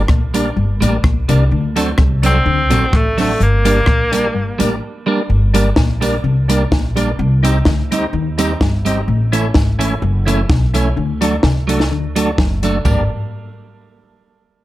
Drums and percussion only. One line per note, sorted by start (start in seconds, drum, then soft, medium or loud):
0.08 kick loud
0.08 cross-stick loud
0.34 closed hi-hat loud
0.34 tambourine medium
0.82 closed hi-hat medium
0.82 tambourine medium
1.04 kick loud
1.04 cross-stick loud
1.29 closed hi-hat medium
1.29 tambourine medium
1.76 closed hi-hat loud
1.76 tambourine medium
1.98 kick loud
1.98 cross-stick loud
2.23 closed hi-hat loud
2.23 tambourine medium
2.71 closed hi-hat medium
2.71 tambourine medium
2.93 kick loud
2.93 cross-stick loud
3.18 open hi-hat medium
3.18 tambourine medium
3.40 hi-hat pedal medium
3.65 closed hi-hat loud
3.65 tambourine medium
3.86 kick loud
3.86 cross-stick loud
4.13 closed hi-hat loud
4.13 tambourine medium
4.60 closed hi-hat medium
4.60 tambourine medium
5.55 closed hi-hat loud
5.55 tambourine medium
5.76 kick loud
5.76 snare loud
6.02 closed hi-hat loud
6.02 tambourine medium
6.50 closed hi-hat loud
6.50 tambourine medium
6.72 kick loud
6.72 snare loud
6.97 closed hi-hat medium
6.97 tambourine medium
7.45 closed hi-hat loud
7.45 tambourine medium
7.65 kick loud
7.65 snare loud
7.92 closed hi-hat loud
7.92 tambourine medium
8.39 closed hi-hat loud
8.39 tambourine medium
8.61 kick loud
8.61 snare loud
8.85 closed hi-hat medium
8.85 tambourine medium
9.33 closed hi-hat loud
9.33 tambourine medium
9.54 kick loud
9.54 snare loud
9.80 closed hi-hat loud
9.80 tambourine medium
10.27 closed hi-hat medium
10.27 tambourine medium
10.50 kick loud
10.50 snare loud
10.74 closed hi-hat medium
10.74 tambourine medium
11.22 closed hi-hat loud
11.22 tambourine medium
11.43 kick loud
11.43 snare loud
11.69 closed hi-hat loud
11.69 tambourine medium
11.80 snare medium
12.16 closed hi-hat loud
12.16 tambourine medium
12.38 kick loud
12.38 snare loud
12.63 closed hi-hat medium
12.63 tambourine medium
12.85 kick loud
12.85 floor tom medium
12.85 tambourine medium